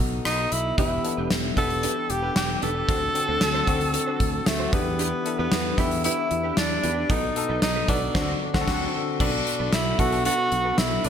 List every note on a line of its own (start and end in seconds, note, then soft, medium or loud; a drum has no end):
0.00 0.18 B1 medium
0.00 0.80 B2 medium
0.00 0.77 B3 medium
0.00 0.80 D#4 medium
0.00 0.80 F#4 medium
0.00 0.80 A4 medium
0.25 0.45 B1 medium
0.25 0.54 D#4 medium
0.25 cross-stick loud
0.25 closed hi-hat medium
0.52 0.71 B1 medium
0.52 0.78 E4 loud
0.52 closed hi-hat medium
0.77 0.97 E1 loud
0.77 1.53 E3 medium
0.77 0.95 B3 medium
0.77 0.95 D4 medium
0.77 0.96 D4 medium
0.77 0.96 E4 medium
0.77 1.27 E4 medium
0.77 0.96 G4 medium
0.77 0.91 G4 medium
0.77 0.90 B4 medium
0.77 kick loud
0.77 closed hi-hat medium
0.91 muted clean electric guitar stroke soft
1.04 1.39 B3 medium
1.04 1.39 D4 medium
1.04 1.40 E4 medium
1.04 1.40 A4 medium
1.04 muted clean electric guitar stroke soft
1.04 closed hi-hat medium
1.17 1.27 E1 medium
1.17 1.31 D4 soft
1.17 1.31 G4 medium
1.17 1.30 B4 medium
1.30 1.50 E1 medium
1.30 snare loud
1.30 closed hi-hat medium
1.44 muted clean electric guitar stroke soft
1.57 1.85 E1 medium
1.57 2.27 B3 medium
1.57 1.74 D4 medium
1.57 2.27 D4 medium
1.57 2.27 E4 medium
1.57 2.27 G4 medium
1.57 1.70 G4 medium
1.57 2.12 A4 loud
1.57 1.69 B4 medium
1.57 kick medium
1.57 closed hi-hat medium
1.70 muted clean electric guitar stroke soft
1.70 closed hi-hat soft
1.83 2.00 D4 medium
1.83 1.97 G4 medium
1.83 1.95 B4 loud
1.83 closed hi-hat medium
1.97 muted clean electric guitar stroke soft
2.10 2.29 E1 medium
2.10 2.36 G4 medium
2.10 muted clean electric guitar stroke soft
2.10 closed hi-hat medium
2.22 2.35 D4 medium
2.22 2.35 G4 medium
2.22 2.36 B4 medium
2.36 2.55 E1 medium
2.36 2.61 G4 medium
2.36 muted clean electric guitar stroke soft
2.36 snare loud
2.36 closed hi-hat medium
2.49 muted clean electric guitar stroke soft
2.62 2.81 E1 medium
2.62 2.76 D4 medium
2.62 2.75 G4 medium
2.62 4.49 A4 loud
2.62 2.74 B4 medium
2.62 closed hi-hat medium
2.75 2.87 D4 soft
2.75 2.89 G4 medium
2.75 2.88 B4 medium
2.88 3.08 D2 medium
2.88 3.64 D3 medium
2.88 3.06 C4 medium
2.88 3.05 D4 medium
2.88 3.06 D4 medium
2.88 3.06 F#4 medium
2.88 3.02 F#4 medium
2.88 3.06 A4 medium
2.88 3.00 C5 medium
2.88 kick loud
2.88 closed hi-hat medium
3.01 muted clean electric guitar stroke soft
3.15 3.50 C4 medium
3.15 3.50 D4 medium
3.15 3.50 F#4 medium
3.15 3.50 A4 medium
3.15 muted clean electric guitar stroke soft
3.15 closed hi-hat medium
3.28 3.38 D2 medium
3.28 3.40 D4 soft
3.28 3.40 F#4 medium
3.28 3.41 C5 medium
3.41 3.60 D2 medium
3.41 muted clean electric guitar stroke soft
3.41 snare loud
3.41 closed hi-hat medium
3.54 3.66 D4 medium
3.54 3.67 F#4 medium
3.54 3.68 C5 medium
3.67 3.96 D2 medium
3.67 4.37 C4 medium
3.67 3.80 D4 medium
3.67 4.38 D4 medium
3.67 4.38 F#4 medium
3.67 3.81 F#4 medium
3.67 4.38 A4 medium
3.67 3.79 C5 medium
3.67 kick medium
3.67 closed hi-hat medium
3.80 muted clean electric guitar stroke soft
3.80 closed hi-hat soft
3.93 muted clean electric guitar stroke soft
3.93 closed hi-hat medium
4.06 4.19 D4 medium
4.06 4.19 F#4 medium
4.06 4.20 C5 medium
4.20 4.39 D2 medium
4.20 muted clean electric guitar stroke soft
4.20 kick medium
4.20 closed hi-hat medium
4.33 muted clean electric guitar stroke soft
4.46 4.66 D2 medium
4.46 4.75 A3 medium
4.46 muted clean electric guitar stroke soft
4.46 snare loud
4.46 closed hi-hat medium
4.59 4.71 D4 medium
4.59 4.73 F#4 medium
4.59 4.74 C5 medium
4.72 5.11 E2 medium
4.72 5.48 E3 medium
4.72 5.15 B3 medium
4.72 5.39 B3 medium
4.72 4.86 D4 medium
4.72 5.15 D4 medium
4.72 5.15 E4 medium
4.72 5.15 G4 medium
4.72 4.86 G4 medium
4.72 4.85 B4 medium
4.72 kick loud
4.72 closed hi-hat medium
4.86 muted clean electric guitar stroke soft
4.99 5.16 D4 medium
4.99 5.12 G4 medium
4.99 5.11 B4 medium
4.99 closed hi-hat medium
5.12 muted clean electric guitar stroke soft
5.25 5.60 B3 medium
5.25 5.60 D4 medium
5.25 5.61 E4 medium
5.25 5.61 A4 medium
5.25 muted clean electric guitar stroke soft
5.25 closed hi-hat medium
5.38 5.48 E2 medium
5.38 5.80 B3 medium
5.38 5.52 D4 medium
5.38 5.52 G4 medium
5.38 5.51 B4 medium
5.52 5.71 E2 medium
5.52 snare loud
5.52 closed hi-hat medium
5.65 muted clean electric guitar stroke soft
5.78 6.07 E2 medium
5.78 6.48 B3 medium
5.78 5.94 D4 medium
5.78 6.48 D4 medium
5.78 6.48 E4 medium
5.78 6.04 E4 medium
5.78 5.91 G4 medium
5.78 6.49 G4 medium
5.78 5.90 B4 medium
5.78 kick medium
5.78 closed hi-hat medium
5.91 muted clean electric guitar stroke soft
5.91 closed hi-hat soft
6.04 6.21 D4 medium
6.04 6.59 E4 medium
6.04 6.17 G4 medium
6.04 6.16 B4 medium
6.04 closed hi-hat medium
6.17 muted clean electric guitar stroke soft
6.30 6.50 E2 medium
6.30 muted clean electric guitar stroke soft
6.30 closed hi-hat medium
6.43 6.56 D4 soft
6.43 6.56 G4 soft
6.43 6.57 B4 medium
6.57 6.76 E2 medium
6.57 7.12 D4 medium
6.57 muted clean electric guitar stroke soft
6.57 snare loud
6.57 closed hi-hat medium
6.70 muted clean electric guitar stroke soft
6.83 7.02 E2 medium
6.83 6.97 D4 medium
6.83 6.96 G4 medium
6.83 6.95 B4 medium
6.83 closed hi-hat medium
6.96 7.09 D4 medium
6.96 7.10 G4 medium
6.96 7.09 B4 medium
7.09 7.29 B1 medium
7.09 7.85 B2 medium
7.09 7.27 B3 medium
7.09 7.26 D#4 medium
7.09 7.27 D#4 medium
7.09 7.62 D#4 medium
7.09 7.27 F#4 medium
7.09 7.28 A4 medium
7.09 7.23 A4 medium
7.09 7.21 B4 medium
7.09 kick loud
7.09 closed hi-hat medium
7.23 muted clean electric guitar stroke soft
7.35 7.71 B3 medium
7.35 7.71 D#4 medium
7.35 7.71 F#4 medium
7.35 7.71 A4 medium
7.35 muted clean electric guitar stroke soft
7.35 closed hi-hat medium
7.49 7.59 B1 medium
7.49 7.61 D#4 soft
7.49 7.62 A4 medium
7.49 7.62 B4 medium
7.62 7.81 B1 medium
7.62 7.87 D#4 medium
7.62 muted clean electric guitar stroke soft
7.62 snare loud
7.62 closed hi-hat medium
7.75 7.87 D#4 medium
7.75 7.88 A4 medium
7.75 7.89 B4 medium
7.88 8.08 B1 medium
7.88 8.15 B3 medium
7.88 8.64 D4 medium
7.88 8.01 D#4 medium
7.88 8.15 D#4 medium
7.88 8.14 F#4 medium
7.88 8.02 A4 medium
7.88 8.15 A4 medium
7.88 8.00 B4 medium
7.88 kick medium
7.88 closed hi-hat medium
8.01 muted clean electric guitar stroke soft
8.14 8.33 D2 medium
8.14 8.33 D3 medium
8.14 8.32 C4 medium
8.14 8.33 D4 medium
8.14 8.34 D4 medium
8.14 8.33 F#4 medium
8.14 8.33 C5 medium
8.14 kick loud
8.14 snare loud
8.14 crash medium
8.22 8.37 A4 medium
8.54 8.66 D2 medium
8.54 8.66 D3 medium
8.54 8.65 C4 medium
8.54 8.66 D4 medium
8.54 8.66 F#4 medium
8.54 8.66 F#4 loud
8.54 8.65 C5 medium
8.54 kick loud
8.54 snare loud
8.61 8.70 A4 medium
8.67 8.86 D2 medium
8.67 8.85 D3 medium
8.67 8.85 C4 medium
8.67 8.85 D4 medium
8.67 8.86 D4 medium
8.67 8.86 F#4 medium
8.67 8.85 C5 medium
8.67 kick loud
8.67 snare loud
8.67 crash medium
8.74 8.89 A4 medium
9.19 9.39 B1 medium
9.19 9.95 B2 medium
9.19 9.72 B3 medium
9.19 9.26 C4 medium
9.19 9.36 D4 medium
9.19 9.75 D4 medium
9.19 9.73 F#4 medium
9.19 9.73 A4 medium
9.19 9.33 A4 medium
9.19 9.32 B4 medium
9.19 kick loud
9.19 crash medium
9.26 9.76 D4 medium
9.33 muted clean electric guitar stroke soft
9.46 muted clean electric guitar stroke soft
9.46 closed hi-hat medium
9.59 9.69 B1 medium
9.59 9.73 D4 soft
9.59 9.73 A4 medium
9.59 9.72 B4 medium
9.73 9.92 B1 medium
9.73 10.01 E4 loud
9.73 snare loud
9.73 closed hi-hat medium
9.85 muted clean electric guitar stroke soft
9.98 10.27 B1 medium
9.98 10.08 B3 medium
9.98 10.15 D4 medium
9.98 10.08 D4 medium
9.98 10.08 F#4 medium
9.98 10.25 F#4 loud
9.98 10.12 A4 medium
9.98 10.08 A4 medium
9.98 10.11 B4 medium
9.98 kick medium
9.98 closed hi-hat medium
10.12 10.82 B3 medium
10.12 10.82 D4 medium
10.12 10.82 F#4 medium
10.12 10.83 A4 medium
10.12 muted clean electric guitar stroke soft
10.12 closed hi-hat soft
10.25 10.42 D4 medium
10.25 10.80 F#4 loud
10.25 10.38 A4 medium
10.25 10.37 B4 medium
10.25 closed hi-hat medium
10.38 muted clean electric guitar stroke soft
10.51 10.71 B1 medium
10.51 muted clean electric guitar stroke soft
10.51 closed hi-hat medium
10.64 10.76 D4 medium
10.64 10.77 A4 medium
10.64 10.78 B4 medium
10.78 10.97 B1 loud
10.78 11.07 E4 medium
10.78 muted clean electric guitar stroke soft
10.78 snare loud
10.78 closed hi-hat medium
10.91 muted clean electric guitar stroke medium
11.04 11.09 B1 medium
11.04 11.09 D4 medium
11.04 11.09 A4 medium
11.04 11.09 B4 medium
11.04 closed hi-hat medium